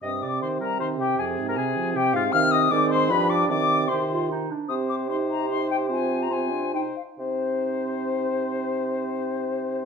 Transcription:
<<
  \new Staff \with { instrumentName = "Flute" } { \time 3/4 \key c \minor \tempo 4 = 151 ees'''8 d'''8 c'''8 bes''8 c'''8 g''8 | aes''8. bes''16 aes''4 g''8 f''8 | f'''8 ees'''8 d'''8 c'''8 b''8 d'''8 | d'''4 c'''4 r4 |
ees'''8 d'''8 c'''8 bes''8 c'''8 g''8 | aes''8. bes''16 aes''4 g''8 f''8 | c''2.~ | c''2. | }
  \new Staff \with { instrumentName = "Oboe" } { \time 3/4 \key c \minor ees''8 d''8 c''8 bes'8 c''8 g'8 | aes'8. bes'16 aes'4 g'8 f'8 | f''8 ees''8 d''8 c''8 b'8 d''8 | d''4 c''4 r4 |
c''4 c''2 | c''4 c''4 c''8 r8 | c''2.~ | c''2. | }
  \new Staff \with { instrumentName = "Clarinet" } { \time 3/4 \key c \minor c'2.~ | c'2. | c'4 c'4 d'4 | c'4 g'8 f'8 ees'8 d'8 |
g'2. | f'2 ees'8 r8 | ees'2.~ | ees'2. | }
  \new Staff \with { instrumentName = "French horn" } { \clef bass \time 3/4 \key c \minor g,8 c8 ees8 g8 ees8 c8 | f,8 aes,8 c8 f8 c8 aes,8 | ees4 ees4 f4 | ees4 ees4. r8 |
c'4 ees'4 ees'4 | c'4 c'8 d'8 ees'8 r8 | c'2.~ | c'2. | }
  \new Staff \with { instrumentName = "Bassoon" } { \clef bass \time 3/4 \key c \minor c2.~ | c2. | c4 aes,4 g,4 | c2~ c8 r8 |
c2.~ | c2~ c8 r8 | c2.~ | c2. | }
>>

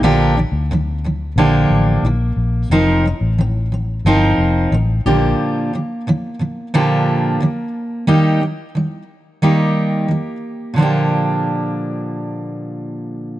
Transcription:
<<
  \new Staff \with { instrumentName = "Steel-string acoustic guitar" } { \clef bass \time 4/4 \key bes \major \tempo 4 = 90 <bes, d f bes d' g'>8 <bes, d f>8 <bes, d f>8 <bes, d f>8 <d f bes d' g'>4 <bes, d f>8 r8 | <f c' ees' bes'>8 <f c'>8 <f c'>8 <f c'>8 <f c' ees' bes'>4 <f c'>8 <bes, d f bes d' g'>8~ | <bes, d f bes d' g'>8 <bes, d f>8 <bes, d f>8 <bes, d f>8 <bes, d f bes d' g'>4 <bes, d f>8 r8 | <ees g bes ees' g'>8 <ees g>8 <ees g>8 r8 <ees g bes ees' g'>4 <ees g>8 r8 |
<bes, d f bes d' g'>1 | }
  \new Staff \with { instrumentName = "Fingered electric bass" } { \clef bass \time 4/4 \key bes \major bes,,8. d,4~ d,16 bes,,8 a,,8 bes,,8 bes,,8 | f,,8. a,,4~ a,,16 g,,8 f,,8 a,,8 bes,,8 | r1 | r1 |
r1 | }
>>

